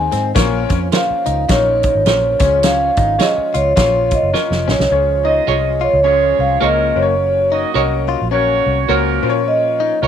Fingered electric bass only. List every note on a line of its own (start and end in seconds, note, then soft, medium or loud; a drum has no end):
0.13 0.32 G#2 medium
0.36 0.65 A#1 medium
0.70 0.90 F2 medium
1.10 muted fingered electric bass stroke soft
1.27 1.46 C#2 medium
1.49 1.88 A#1 medium
1.95 2.05 G#1 medium
2.06 2.35 A#1 medium
2.41 2.89 C#2 medium
2.98 3.17 G#1 medium
3.38 muted fingered electric bass stroke soft
3.55 3.74 C#2 medium
3.77 4.16 A#1 loud
4.23 4.32 F#1 medium
4.51 4.65 F1 medium
4.68 4.78 A#1 medium
4.79 4.89 C2 medium
4.91 5.39 C#2 medium
5.48 5.87 C2 medium
5.93 6.32 C#2 medium
6.39 6.58 C2 medium
6.62 6.91 C#2 medium
6.96 7.64 F#1 medium
7.75 8.14 C2 medium
8.22 8.60 A#1 medium
8.66 8.86 C2 medium
8.89 9.18 C#2 medium
9.23 9.91 A#2 medium
10.03 10.07 C2 medium